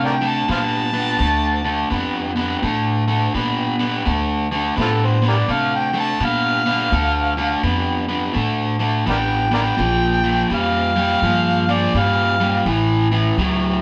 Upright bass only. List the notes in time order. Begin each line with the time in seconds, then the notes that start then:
Already playing: C3
0.49 A#2
1.20 D2
1.91 F2
2.63 A2
3.34 A#2
4.06 D2
4.78 A2
5.49 C3
6.20 A#2
6.92 D2
7.63 F2
8.36 A2
9.07 A1
9.79 A#1
10.50 F2
11.22 G2
11.94 G2
12.66 A1
13.37 C#2